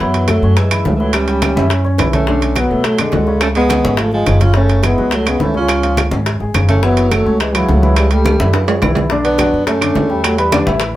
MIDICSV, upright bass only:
0, 0, Header, 1, 2, 480
1, 0, Start_track
1, 0, Time_signature, 4, 2, 24, 8
1, 0, Key_signature, 3, "minor"
1, 0, Tempo, 284495
1, 18493, End_track
2, 0, Start_track
2, 0, Title_t, "Upright bass"
2, 0, Program_c, 0, 32
2, 0, Note_on_c, 0, 42, 86
2, 668, Note_off_c, 0, 42, 0
2, 710, Note_on_c, 0, 42, 84
2, 1385, Note_off_c, 0, 42, 0
2, 1438, Note_on_c, 0, 37, 79
2, 2549, Note_off_c, 0, 37, 0
2, 2634, Note_on_c, 0, 42, 84
2, 3308, Note_off_c, 0, 42, 0
2, 3361, Note_on_c, 0, 35, 81
2, 4471, Note_off_c, 0, 35, 0
2, 4563, Note_on_c, 0, 47, 86
2, 5233, Note_off_c, 0, 47, 0
2, 5282, Note_on_c, 0, 37, 88
2, 6392, Note_off_c, 0, 37, 0
2, 6486, Note_on_c, 0, 32, 83
2, 7155, Note_off_c, 0, 32, 0
2, 7194, Note_on_c, 0, 30, 84
2, 8309, Note_off_c, 0, 30, 0
2, 8403, Note_on_c, 0, 37, 84
2, 9074, Note_off_c, 0, 37, 0
2, 9120, Note_on_c, 0, 37, 85
2, 10232, Note_off_c, 0, 37, 0
2, 10321, Note_on_c, 0, 32, 92
2, 10770, Note_off_c, 0, 32, 0
2, 10791, Note_on_c, 0, 32, 67
2, 11021, Note_off_c, 0, 32, 0
2, 11033, Note_on_c, 0, 30, 82
2, 12148, Note_off_c, 0, 30, 0
2, 12244, Note_on_c, 0, 37, 80
2, 12914, Note_off_c, 0, 37, 0
2, 12960, Note_on_c, 0, 37, 87
2, 14071, Note_off_c, 0, 37, 0
2, 14169, Note_on_c, 0, 42, 81
2, 14836, Note_off_c, 0, 42, 0
2, 14884, Note_on_c, 0, 35, 88
2, 15991, Note_off_c, 0, 35, 0
2, 16073, Note_on_c, 0, 42, 78
2, 16746, Note_off_c, 0, 42, 0
2, 16797, Note_on_c, 0, 40, 89
2, 17906, Note_off_c, 0, 40, 0
2, 17996, Note_on_c, 0, 33, 88
2, 18493, Note_off_c, 0, 33, 0
2, 18493, End_track
0, 0, End_of_file